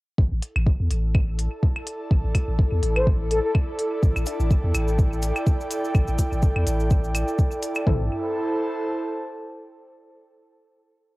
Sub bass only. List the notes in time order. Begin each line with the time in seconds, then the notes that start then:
0.19 A1
0.32 A1
0.56 A1
0.80 E2
0.91 A1
2.11 A1
2.24 A1
2.48 A1
2.72 E2
2.83 A1
4.03 A1
4.16 A1
4.40 A1
4.64 E2
4.75 A1
5.95 A1
6.08 A1
6.32 A1
6.56 E2
6.67 A1
7.87 A1